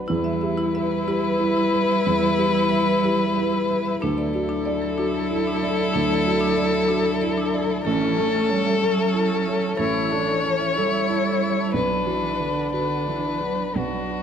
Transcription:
0.00 0.11 B1 medium
0.00 0.12 D4 soft
0.00 0.11 F#4 soft
0.00 0.12 B4 soft
0.00 0.12 D5 soft
0.08 2.02 E2 medium
0.08 3.97 G3 medium
0.08 0.18 E4 medium
0.08 3.98 E4 medium
0.08 3.98 B4 medium
0.24 0.35 E5 medium
0.41 0.95 G4 medium
0.41 0.51 E5 medium
0.57 0.68 E4 medium
0.75 1.28 B4 medium
0.75 0.85 E5 medium
0.91 1.01 B4 medium
1.08 1.18 E4 medium
1.08 1.60 G4 medium
1.24 1.34 B4 medium
1.40 1.93 E4 medium
1.40 1.51 E5 medium
1.57 1.67 E4 medium
1.73 2.25 B4 medium
1.73 1.83 B4 medium
1.89 1.99 E5 medium
2.06 3.97 E2 medium
2.06 2.16 E4 medium
2.23 2.33 E5 medium
2.38 2.91 G4 medium
2.38 2.48 E5 medium
2.55 2.65 E4 medium
2.71 3.23 B4 medium
2.71 2.81 E5 medium
2.87 2.97 B4 medium
3.03 3.13 E4 medium
3.03 3.56 G4 medium
3.19 3.29 B4 medium
3.36 3.89 E4 medium
3.36 3.46 E5 medium
3.52 3.62 E4 medium
3.69 3.78 B4 medium
3.69 4.02 B4 medium
3.86 3.95 E5 medium
4.02 5.90 D2 medium
4.02 7.81 F#3 medium
4.02 4.11 D4 medium
4.02 7.81 E4 medium
4.02 7.82 A4 medium
4.18 4.27 D5 medium
4.33 4.85 F#4 medium
4.33 4.43 D5 medium
4.49 4.59 D4 medium
4.65 4.75 D5 medium
4.65 5.17 D5 medium
4.82 4.91 A4 medium
4.98 5.07 D4 medium
4.98 5.50 F#4 medium
5.14 5.24 A4 medium
5.30 5.81 E4 soft
5.30 5.40 D5 medium
5.47 5.56 D4 medium
5.62 5.72 A4 medium
5.62 6.13 D5 medium
5.78 5.88 D5 medium
5.93 7.81 D2 medium
5.93 6.03 D4 medium
6.10 6.20 D5 medium
6.25 6.77 F#4 medium
6.25 6.35 D5 medium
6.41 6.50 D4 medium
6.57 6.66 D5 medium
6.57 7.08 D5 medium
6.74 6.83 A4 medium
6.88 6.98 D4 medium
6.88 7.40 F#4 medium
7.05 7.14 A4 medium
7.21 7.73 E4 medium
7.21 7.31 D5 medium
7.37 7.47 D4 medium
7.53 7.63 A4 medium
7.53 7.85 D5 medium
7.70 7.79 D5 medium
7.84 9.75 A1 medium
7.84 8.19 E3 medium
7.84 8.78 C#4 medium
7.84 7.94 A4 medium
7.84 9.75 A4 medium
8.01 8.11 A5 medium
8.17 8.51 A3 medium
8.17 8.69 A4 medium
8.17 8.26 A5 medium
8.33 8.42 A4 medium
8.49 8.83 G3 medium
8.49 9.01 C#5 medium
8.49 8.59 A5 medium
8.65 8.75 E5 medium
8.82 9.78 F#3 medium
8.82 9.77 C#4 medium
8.82 8.91 A4 medium
8.82 9.33 A4 medium
8.99 9.08 E5 medium
9.14 9.66 E4 medium
9.14 9.24 A5 medium
9.30 9.40 A4 medium
9.46 9.99 C#5 medium
9.46 9.56 E5 medium
9.62 9.72 A5 medium
9.77 11.70 A1 medium
9.77 10.79 E3 medium
9.77 10.13 E4 medium
9.77 9.87 A4 medium
9.77 11.71 C#5 medium
9.94 10.04 A5 medium
10.10 10.46 D4 medium
10.10 10.63 A4 medium
10.10 10.20 A5 medium
10.27 10.37 A4 medium
10.45 10.78 C#4 medium
10.45 10.97 C#5 soft
10.45 10.54 A5 medium
10.60 10.70 E5 soft
10.76 11.76 G3 medium
10.76 11.76 E4 medium
10.76 11.28 A4 medium
10.76 10.87 A4 medium
10.94 11.03 E5 medium
11.09 11.61 E4 soft
11.09 11.19 A5 medium
11.27 11.36 A4 medium
11.41 11.74 C#5 soft
11.41 11.53 E5 soft
11.60 11.69 A5 medium
11.74 13.71 B1 medium
11.74 12.08 F#3 medium
11.74 13.75 D4 medium
11.74 12.72 B4 soft
11.74 11.86 B4 medium
11.94 12.02 B5 medium
12.06 12.41 E3 soft
12.06 12.59 F#4 soft
12.06 12.18 B5 soft
12.26 12.35 B4 medium
12.40 12.73 D3 soft
12.40 12.93 B4 soft
12.40 12.51 B5 soft
12.59 12.68 F#5 soft
12.73 13.09 D3 soft
12.73 13.27 F#4 soft
12.73 13.78 B4 soft
12.73 12.84 B4 soft
12.91 13.01 F#5 soft
13.06 13.43 E3 soft
13.06 13.61 D4 soft
13.06 13.18 B5 soft
13.25 13.35 B4 soft
13.41 13.74 F#3 soft
13.41 13.96 B4 soft
13.41 13.52 F#5 soft
13.59 13.69 B5 soft
13.75 14.23 B1 soft
13.75 14.23 F#3 soft
13.75 14.23 D4 soft
13.75 14.23 F#4 soft
13.75 13.86 B4 medium
13.93 14.03 B5 soft
14.11 14.23 F#4 soft
14.11 14.21 B5 soft

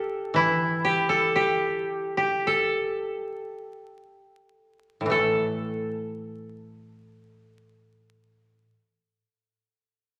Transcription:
0.00 0.84 G4 medium
0.00 1.09 A4 medium
0.34 3.72 E3 soft
0.34 2.62 E4 medium
0.84 1.35 G4 soft
1.09 2.47 A4 soft
1.36 2.17 G4 soft
2.17 4.21 G4 soft
2.47 4.37 A4 soft
5.01 8.61 A2 soft
5.06 8.66 E3 soft
5.10 8.70 A3 soft
5.10 8.68 A4 soft

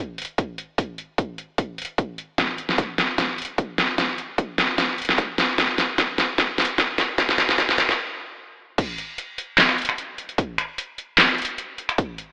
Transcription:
0.18 closed hi-hat soft
0.22 closed hi-hat medium
0.25 closed hi-hat medium
0.38 kick medium
0.38 closed hi-hat medium
0.58 closed hi-hat soft
0.78 kick medium
0.78 closed hi-hat medium
0.98 closed hi-hat soft
1.18 kick loud
1.18 closed hi-hat medium
1.38 closed hi-hat soft
1.58 kick medium
1.58 closed hi-hat medium
1.78 closed hi-hat soft
1.82 closed hi-hat medium
1.85 closed hi-hat medium
1.98 kick medium
1.98 closed hi-hat medium
2.18 closed hi-hat soft
2.38 kick medium
2.38 snare soft
2.38 closed hi-hat medium
2.58 closed hi-hat soft
2.69 snare soft
2.78 kick loud
2.78 closed hi-hat medium
2.98 snare medium
2.98 closed hi-hat soft
3.18 kick loud
3.18 snare medium
3.18 closed hi-hat medium
3.38 closed hi-hat soft
3.42 closed hi-hat medium
3.45 closed hi-hat medium
3.58 kick medium
3.58 closed hi-hat medium
3.78 snare medium
3.78 closed hi-hat soft
3.98 kick loud
3.98 snare medium
3.98 closed hi-hat medium
4.18 closed hi-hat medium
4.38 kick loud
4.38 closed hi-hat medium
4.58 snare medium
4.58 closed hi-hat medium
4.78 kick loud
4.78 snare medium
4.78 closed hi-hat medium
4.98 closed hi-hat soft
5.02 closed hi-hat medium
5.05 closed hi-hat medium
5.09 snare medium
5.18 kick loud
5.18 closed hi-hat medium
5.38 snare medium
5.38 closed hi-hat medium
5.58 kick medium
5.58 snare medium
5.58 closed hi-hat medium
5.78 snare medium
5.78 closed hi-hat medium
5.98 kick loud
5.98 snare medium
5.98 closed hi-hat medium
6.18 snare medium
6.18 closed hi-hat medium
6.38 kick loud
6.38 snare medium
6.38 closed hi-hat medium
6.58 snare medium
6.58 closed hi-hat soft
6.62 closed hi-hat medium
6.65 closed hi-hat medium
6.78 kick loud
6.78 snare medium
6.78 closed hi-hat medium
6.98 snare medium
6.98 closed hi-hat medium
7.18 kick loud
7.18 snare medium
7.18 closed hi-hat medium
7.29 snare medium
7.38 snare medium
7.38 closed hi-hat medium
7.49 snare medium
7.58 kick loud
7.58 snare loud
7.58 closed hi-hat medium
7.69 snare medium
7.78 snare loud
7.78 closed hi-hat medium
7.89 snare medium
8.78 kick loud
8.78 closed hi-hat medium
8.78 crash loud
8.98 closed hi-hat medium
9.18 closed hi-hat medium
9.38 closed hi-hat medium
9.58 snare loud
9.58 clap medium
9.58 closed hi-hat medium
9.69 finger snap soft
9.78 closed hi-hat soft
9.82 closed hi-hat medium
9.85 closed hi-hat medium
9.89 finger snap medium
9.98 closed hi-hat medium
10.18 closed hi-hat medium
10.29 closed hi-hat soft
10.38 kick loud
10.38 closed hi-hat medium
10.58 finger snap medium
10.58 closed hi-hat medium
10.78 closed hi-hat medium
10.98 closed hi-hat medium
11.18 snare loud
11.18 clap medium
11.18 closed hi-hat medium
11.38 closed hi-hat soft
11.42 closed hi-hat medium
11.45 closed hi-hat medium
11.58 closed hi-hat medium
11.78 closed hi-hat medium
11.89 finger snap medium
11.89 closed hi-hat soft
11.98 kick loud
11.98 closed hi-hat medium
12.18 closed hi-hat medium

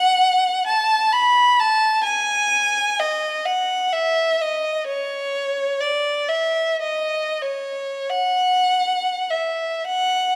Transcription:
0.00 0.67 F#5 medium
0.67 1.11 A5 medium
1.12 1.59 B5 medium
1.60 2.06 A5 medium
2.04 2.96 G#5 medium
2.99 3.46 D#5 medium
3.46 3.93 F#5 medium
3.93 4.39 E5 medium
4.41 4.87 D#5 medium
4.87 5.78 C#5 medium
5.80 6.29 D5 medium
6.29 6.80 E5 medium
6.82 7.40 D#5 medium
7.42 8.09 C#5 medium
8.09 9.29 F#5 medium
9.30 9.86 E5 medium
9.86 10.36 F#5 medium

